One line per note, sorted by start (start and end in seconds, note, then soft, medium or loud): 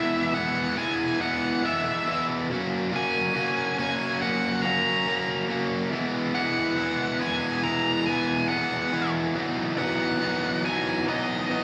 0.00 0.33 E3 medium
0.00 0.34 G#3 medium
0.00 0.34 B3 medium
0.00 0.34 E4 loud
0.00 0.38 E5 medium
0.34 0.75 E3 medium
0.34 0.77 G#3 medium
0.34 0.76 B3 medium
0.34 0.77 E4 loud
0.34 0.78 F#5 loud
0.76 1.19 E3 loud
0.76 1.20 G#3 loud
0.76 1.20 B3 loud
0.76 1.20 E4 loud
0.76 1.21 G#5 loud
1.20 1.63 E3 medium
1.20 1.64 G#3 medium
1.20 1.63 B3 medium
1.20 1.64 E4 medium
1.20 1.65 F#5 loud
1.64 2.05 E3 medium
1.64 2.07 G#3 loud
1.64 2.06 B3 medium
1.64 2.06 E4 medium
1.64 2.25 E5 medium
2.06 2.47 E3 medium
2.06 2.50 G#3 medium
2.06 2.47 B3 loud
2.06 2.47 E4 loud
2.50 2.91 F#3 loud
2.50 2.90 A#3 loud
2.50 2.91 C#4 loud
2.50 2.92 F#4 loud
2.91 3.34 F#3 medium
2.91 3.34 A#3 loud
2.91 3.34 C#4 medium
2.91 3.35 F#4 medium
2.96 3.76 G#5 loud
3.34 3.78 F#3 medium
3.34 3.78 A#3 medium
3.34 3.78 C#4 medium
3.34 3.79 F#4 loud
3.78 4.21 F#3 medium
3.78 4.21 A#3 medium
3.78 4.21 C#4 medium
3.78 4.22 F#4 loud
3.78 4.21 G#5 loud
4.21 4.64 F#3 loud
4.21 4.63 A#3 loud
4.21 4.64 C#4 loud
4.21 4.65 F#4 loud
4.21 4.66 F#5 loud
4.62 5.06 F#3 medium
4.62 5.05 A#3 medium
4.62 5.06 C#4 loud
4.62 5.07 F#4 loud
4.62 5.45 A#5 loud
5.06 5.48 F#3 medium
5.06 5.48 A#3 loud
5.06 5.48 C#4 loud
5.06 5.49 F#4 loud
5.48 5.91 F#3 medium
5.48 5.90 A#3 medium
5.48 5.90 C#4 medium
5.48 5.92 F#4 medium
5.91 6.33 E3 medium
5.91 6.34 G#3 loud
5.91 6.34 B3 loud
5.91 6.34 E4 loud
6.34 6.75 E3 loud
6.34 6.76 G#3 medium
6.34 6.78 B3 loud
6.34 6.77 E4 loud
6.34 7.21 F#5 medium
6.77 7.18 E3 medium
6.77 7.18 G#3 medium
6.77 7.20 B3 medium
6.77 7.19 E4 loud
7.19 7.62 E3 medium
7.19 7.62 G#3 medium
7.19 7.63 B3 loud
7.19 7.63 E4 loud
7.19 7.66 G#5 loud
7.63 8.06 E3 loud
7.63 8.06 G#3 loud
7.63 8.08 B3 loud
7.63 8.07 E4 loud
7.63 8.04 A#5 loud
8.06 8.48 E3 medium
8.06 8.48 G#3 medium
8.06 8.50 B3 loud
8.06 8.49 E4 loud
8.06 8.48 G#5 loud
8.49 8.91 E3 medium
8.49 8.92 G#3 loud
8.49 8.93 B3 medium
8.49 8.92 E4 loud
8.49 9.10 F#5 medium
8.92 9.33 E3 medium
8.92 9.33 G#3 medium
8.92 9.35 B3 medium
8.92 9.33 E4 loud
9.35 9.76 E3 loud
9.35 9.77 F#3 medium
9.35 9.77 B3 loud
9.35 9.78 D#4 loud
9.77 10.19 E3 medium
9.77 10.19 F#3 loud
9.77 10.20 B3 loud
9.77 10.20 D#4 loud
9.77 10.65 F#5 loud
10.20 10.63 E3 medium
10.20 10.64 F#3 medium
10.20 10.64 B3 medium
10.20 10.64 D#4 medium
10.64 11.05 E3 medium
10.64 11.06 F#3 medium
10.64 11.07 B3 medium
10.64 11.07 D#4 medium
10.64 11.05 G#5 loud
11.07 11.48 E3 loud
11.07 11.49 F#3 loud
11.07 11.49 B3 loud
11.07 11.49 D#4 loud
11.07 11.64 D#5 medium
11.49 11.64 E3 medium
11.49 11.64 F#3 medium
11.49 11.64 B3 medium
11.49 11.64 D#4 loud